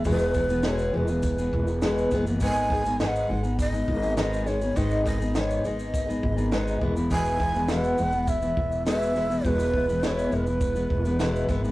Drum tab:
SH |xxxxxx-xxx-xxxxx|xx-xxx-xxx-xxxxx|xxxxxxxxxx-xxx-x|xx-xxxxxxx-xxxxx|
SD |----o-------o-o-|----o-------o-o-|----o-------o---|----o-------o-o-|
BD |o-o-----o-o---o-|o-o-----o-o-----|o-o-----o-o---o-|o-o-----o-o-----|

SH |xx-xxxxxxx-xxxxx|
SD |----o-------o-o-|
BD |o-o-----o-o---o-|